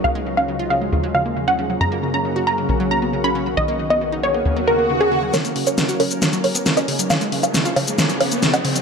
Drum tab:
HH |----------------|----------------|----------------|xxoxxxoxxxoxxxox|
SH |----------------|----------------|----------------|xx-xxx-xxx-xxx-x|
SD |----------------|----------------|----------------|o---o---o---o---|

HH |xxoxxxoxxxoxxxox|
SH |xx-xxx-xxx-xxx-x|
SD |o---o---o---o---|